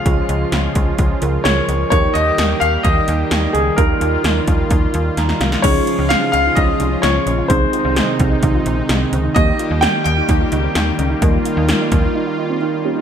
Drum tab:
CC |----------------|----------------|----------------|x---------------|
HH |x-x-x-x-x-x-x-x-|x-x-x-x-x-x-x-x-|x-x-x-x-x-x-x-x-|x-x-x-x-x-x-x-x-|
SD |----o-------o---|----o-------o---|----o-------oooo|----o-------o---|
BD |o-----o-o-------|o-------o-------|o-----o-o-------|o-------o-------|

CC |----------------|----------------|----------------|
HH |x-x-x-x-x-x-x-x-|x-x-x-x-x-x-x-x-|x-x-x-x---------|
SD |----o-------o---|----o-------o---|----o-----------|
BD |o-----o-o-------|o-------o-------|o-----o---------|